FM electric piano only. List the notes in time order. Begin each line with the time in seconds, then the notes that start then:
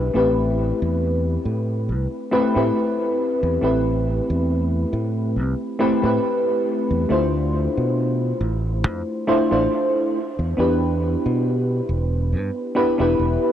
Already playing: B3 D4 E4 G4 B4
0.13 A3 C4 E4 G4 B4
2.31 A3 C4 E4 G4 B4
2.55 A3 C4 E4 G4 B4
3.61 A3 C4 E4 G4 B4
5.79 A3 C4 E4 G4 B4
6.02 A3 C4 E4 G4 B4
7.09 A3 D4 E4 F4 C5
9.27 A3 D4 E4 F4 C5
9.51 A3 D4 E4 F4 C5
10.57 B3 D4 E4 G4 B4
12.75 B3 D4 E4 G4 B4
12.98 B3 D4 E4 G4 B4